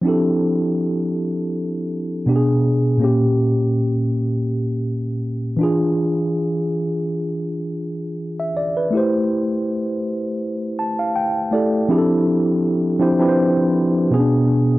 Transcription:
tine electric piano
0.02 F3 C4 D4
0.06 E4 G4 A4
2.26 B2 B3 D4 G4
2.36 G#4
2.98 A#2 A#3
3.02 C#4 G4
5.57 E3 D4
5.61 F4 G#4
8.40 E5
8.57 D5
8.77 B4
8.90 A3 E4
8.95 G4 C5
10.79 A5
10.99 F5
11.16 G5
11.51 A3 E4 G4 A4 D5
11.88 F3 C4 D4 E4 G4 G#4
11.98 A4
12.99 F3 C4 D4 E4 G4 C5
13.19 F3 C4 D4 E4 G4 B4
13.29 C5
14.11 B2 B3 C#4 G#4
14.19 D4

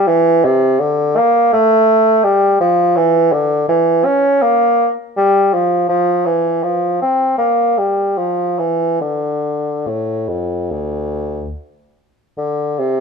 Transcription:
bassoon
0.07 E3
0.45 C3
0.80 D3
1.17 A#3
1.53 A3
2.24 G3
2.60 F3
2.97 E3
3.33 D3
3.69 E3
4.05 C#4
4.42 A#3
5.17 G3
5.54 F3
5.89 F3
6.26 E3
6.63 F3
7.02 C4
7.38 A#3
7.78 G3
8.18 F3
8.59 E3
9.01 D3
9.87 A2
10.28 F2
10.71 D2
12.38 D3
12.79 C3

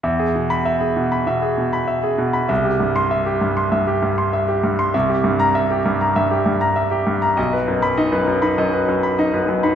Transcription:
grand piano
0.03 E2 E5
0.20 G#4
0.35 B2
0.50 B5
0.65 E5
0.81 G#4
0.96 B2
1.12 B5
1.27 B2 E5
1.42 G#4
1.58 B2
1.73 B5
1.88 E5
2.04 G#4
2.18 B2
2.33 B5
2.49 C2 E5
2.64 G4
2.80 G2
2.96 C6
3.11 E5
3.26 G4
3.41 G2
3.57 C6
3.72 G2 E5
3.87 G4
4.03 G2
4.18 C6
4.33 E5
4.48 G4
4.64 G2
4.79 C6
4.94 C2 E5
5.09 G4
5.24 G2
5.40 A#5
5.55 E5
5.70 G4
5.86 G2
6.01 A#5
6.16 G2 E5
6.31 G4
6.46 G2
6.61 A#5
6.76 E5
6.91 G4
7.07 G2
7.22 A#5
7.37 B1 D#5
7.53 B4
7.68 F#2
7.82 B5
7.97 D#4 D#5
8.12 F#2 B4
8.27 F#2
8.42 D#4 B5
8.58 F#2 D#5
8.73 B4
8.88 F#2
9.03 B5
9.19 D#4 D#5
9.34 F#2 B4
9.48 F#2
9.63 D#4 B5

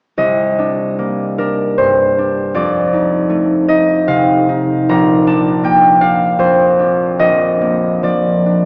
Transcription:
harp
0.18 C2 D#5
0.59 D4
0.99 A#3
1.38 D4 A#4
1.78 G2 C5
2.18 D4
2.54 F2 D5
2.93 D#4
3.29 A3
3.68 D#4 D#5
4.07 C3 F5
4.49 D#4
4.89 A#1 A#5
5.27 D4 A5
5.63 A#3 G5
6.01 D4 F5
6.39 F2 C5
6.79 D4
7.19 A#1 D#5
7.61 A#3
8.03 F3 D5
8.46 D4

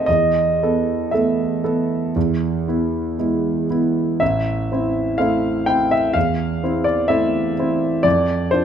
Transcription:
grand piano
0.06 E2 D#5
0.63 B3 A4
1.11 A3 B3 A4 E5
1.64 B3 A4
2.16 E2
2.68 B3 E4
3.18 G#3 B3 E4
3.70 B3 E4
4.20 A1 E5
4.72 C4 E4
5.18 A3 C4 E4 F5
5.66 C4 E4 G5
5.91 E5
6.13 E2 F5
6.64 C4 E4
6.84 D5
7.08 A3 C4 E4 E5
7.59 C4 E4
8.03 F2 D5
8.51 D4 F4 C5

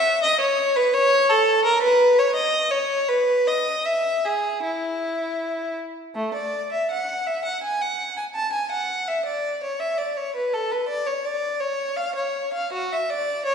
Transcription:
violin
Already playing: E5
0.23 D#5
0.40 C#5
0.76 B4
0.93 C#5
1.29 A4
1.64 A#4
1.82 B4
2.18 C#5
2.35 D#5
2.71 C#5
3.08 B4
3.47 D#5
3.85 E5
4.25 G#4
4.63 E4
6.15 A3
6.34 D5
6.72 E5
6.91 F#5
7.27 E5
7.45 F#5
7.63 G#5
7.81 F#5
8.17 G#5
8.35 A5
8.52 G#5
8.71 F#5
9.08 E5
9.25 D5
9.63 C#5
9.79 E5
9.98 D5
10.17 C#5
10.35 B4
10.53 A4
10.71 B4
10.88 D5
11.06 C#5
11.25 D5
11.60 C#5
11.96 F5
12.15 C#5
12.53 F5
12.73 F#4
12.92 E5
13.10 D5
13.45 C#5

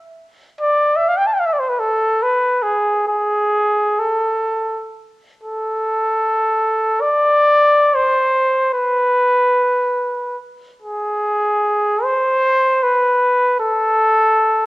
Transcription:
trumpet
0.61 D5
0.97 E5
1.09 F5
1.17 G5
1.27 A5
1.34 G5
1.40 F5
1.46 E5
1.53 D5
1.60 C5
1.69 B4
1.79 A4
2.23 B4
2.63 G#4
3.07 G#4
3.99 A4
5.43 A4
7.01 D5
7.95 C5
8.74 B4
10.82 G#4
12.03 C5
12.83 B4
13.61 A4

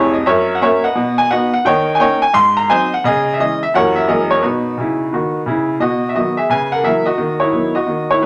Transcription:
upright piano
Already playing: F1 F2 E4 G#4 C#5
0.13 D#5
0.26 F#2 A#4 C#5 E5
0.55 F#5
0.61 A#3 C#4 F#4 A#4 C#5 E5
0.84 B4 D#5 F#5
0.95 B2
1.18 G#5
1.30 B3 D#4 F#4 B4 D#5 F#5
1.54 F#5
1.65 D#3 C#5 D#5 G5
1.95 A#3 G#5
1.99 C#4 D#4 C#5 D#5 G5
2.22 G#5
2.33 G#2 C6
2.57 A#5
2.69 F#3 C4 D#4 C5 D#5 G#5
2.94 F#5
3.04 C#3 G#4 D#5
3.34 E5
3.40 E3 G#3 C#4 D#5
3.63 E5
3.74 F#2 E3 G3 A#3 A#4 C#5 F#5
3.96 E5
4.08 F#2 E3 G#3 A#3 G#4 A#4 D#5
4.31 C#5
4.42 B2 D#4 F#4 B4
4.78 C#3 E4
5.13 D#3 F#4
5.46 C#3 E4
5.80 B2 F#4 D#5
6.09 E5
6.15 D#3 F#3 B3 F#4 D#5
6.37 G#4 E5
6.49 C#3 B4 G#5
6.72 A#4 F#5
6.83 E3 F#3 A#3 A#4 E5
7.06 F#4 D#5
7.18 D#3
7.40 E4 C#5
7.52 D#3 F#3 B3
7.75 F#4 D#5
7.87 D#3
8.11 E4 C#5
8.21 D#3 F#3 B3 B4

